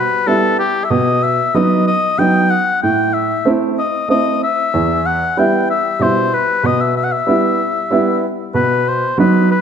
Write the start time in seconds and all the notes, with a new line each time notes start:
Already playing: B4
0.27 G3 B3 E4 A4
0.59 G4
0.84 E5
0.90 B2 D#5
1.23 E5
1.54 F#3 B3 D#4 D#5
1.87 D#5
2.18 F#3 B3 D#4 G5
2.50 F#5
2.83 A2 G5
3.13 E5
3.45 A3 C4 E4
3.79 D#5
4.08 A3 C4 E4 D#5
4.44 E5
4.74 E2
5.06 F#5
5.37 G3 B3 E4 G5
5.71 E5
5.99 B2 G3 E4 C5
6.34 B4
6.63 B2 D#5
6.81 E5
6.97 E5
7.04 F#5
7.12 E5
7.27 G3 B3 E4
7.91 G3 B3 E4
8.54 B2 B4
8.88 C5
9.18 F#3 B3 D#4 B4
9.52 B4